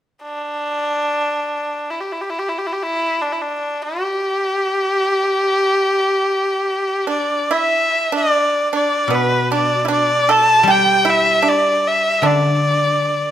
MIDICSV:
0, 0, Header, 1, 4, 480
1, 0, Start_track
1, 0, Tempo, 500000
1, 12780, End_track
2, 0, Start_track
2, 0, Title_t, "Erhu"
2, 0, Program_c, 0, 110
2, 216, Note_on_c, 0, 62, 72
2, 1824, Note_on_c, 0, 64, 53
2, 1838, Note_off_c, 0, 62, 0
2, 1921, Note_on_c, 0, 67, 48
2, 1935, Note_off_c, 0, 64, 0
2, 2034, Note_on_c, 0, 64, 52
2, 2049, Note_off_c, 0, 67, 0
2, 2120, Note_on_c, 0, 67, 51
2, 2134, Note_off_c, 0, 64, 0
2, 2206, Note_on_c, 0, 64, 61
2, 2220, Note_off_c, 0, 67, 0
2, 2290, Note_on_c, 0, 67, 62
2, 2305, Note_off_c, 0, 64, 0
2, 2387, Note_on_c, 0, 64, 55
2, 2402, Note_off_c, 0, 67, 0
2, 2476, Note_on_c, 0, 67, 62
2, 2491, Note_off_c, 0, 64, 0
2, 2557, Note_on_c, 0, 64, 57
2, 2571, Note_off_c, 0, 67, 0
2, 2617, Note_on_c, 0, 67, 59
2, 2632, Note_off_c, 0, 64, 0
2, 2716, Note_on_c, 0, 64, 77
2, 2730, Note_off_c, 0, 67, 0
2, 3086, Note_on_c, 0, 62, 67
2, 3100, Note_off_c, 0, 64, 0
2, 3186, Note_on_c, 0, 64, 55
2, 3200, Note_off_c, 0, 62, 0
2, 3277, Note_on_c, 0, 62, 70
2, 3292, Note_off_c, 0, 64, 0
2, 3666, Note_on_c, 0, 67, 83
2, 3681, Note_off_c, 0, 62, 0
2, 6782, Note_off_c, 0, 67, 0
2, 6817, Note_on_c, 0, 74, 64
2, 7223, Note_on_c, 0, 76, 77
2, 7237, Note_off_c, 0, 74, 0
2, 7799, Note_off_c, 0, 76, 0
2, 7838, Note_on_c, 0, 74, 76
2, 8350, Note_off_c, 0, 74, 0
2, 8398, Note_on_c, 0, 74, 73
2, 8776, Note_on_c, 0, 71, 74
2, 8790, Note_off_c, 0, 74, 0
2, 9130, Note_off_c, 0, 71, 0
2, 9139, Note_on_c, 0, 74, 77
2, 9476, Note_off_c, 0, 74, 0
2, 9523, Note_on_c, 0, 74, 79
2, 9890, Note_on_c, 0, 81, 93
2, 9904, Note_off_c, 0, 74, 0
2, 10272, Note_on_c, 0, 79, 90
2, 10287, Note_off_c, 0, 81, 0
2, 10647, Note_on_c, 0, 76, 86
2, 10661, Note_off_c, 0, 79, 0
2, 11023, Note_on_c, 0, 74, 80
2, 11037, Note_off_c, 0, 76, 0
2, 11399, Note_on_c, 0, 76, 78
2, 11413, Note_off_c, 0, 74, 0
2, 11762, Note_on_c, 0, 74, 80
2, 11777, Note_off_c, 0, 76, 0
2, 12780, Note_off_c, 0, 74, 0
2, 12780, End_track
3, 0, Start_track
3, 0, Title_t, "Pipa"
3, 0, Program_c, 1, 105
3, 6788, Note_on_c, 1, 62, 51
3, 7176, Note_off_c, 1, 62, 0
3, 7207, Note_on_c, 1, 64, 63
3, 7753, Note_off_c, 1, 64, 0
3, 7798, Note_on_c, 1, 62, 61
3, 8330, Note_off_c, 1, 62, 0
3, 8380, Note_on_c, 1, 62, 56
3, 8721, Note_off_c, 1, 62, 0
3, 8740, Note_on_c, 1, 59, 62
3, 9086, Note_off_c, 1, 59, 0
3, 9135, Note_on_c, 1, 62, 65
3, 9412, Note_off_c, 1, 62, 0
3, 9455, Note_on_c, 1, 64, 48
3, 9484, Note_off_c, 1, 64, 0
3, 9488, Note_on_c, 1, 62, 65
3, 9837, Note_off_c, 1, 62, 0
3, 9877, Note_on_c, 1, 69, 70
3, 10216, Note_off_c, 1, 69, 0
3, 10248, Note_on_c, 1, 67, 68
3, 10588, Note_off_c, 1, 67, 0
3, 10606, Note_on_c, 1, 64, 64
3, 10955, Note_off_c, 1, 64, 0
3, 10967, Note_on_c, 1, 62, 60
3, 11697, Note_off_c, 1, 62, 0
3, 11741, Note_on_c, 1, 62, 62
3, 12780, Note_off_c, 1, 62, 0
3, 12780, End_track
4, 0, Start_track
4, 0, Title_t, "Guzheng"
4, 0, Program_c, 2, 107
4, 8714, Note_on_c, 2, 47, 46
4, 10207, Note_on_c, 2, 55, 49
4, 10969, Note_off_c, 2, 47, 0
4, 11730, Note_on_c, 2, 50, 47
4, 12506, Note_off_c, 2, 55, 0
4, 12780, Note_off_c, 2, 50, 0
4, 12780, End_track
0, 0, End_of_file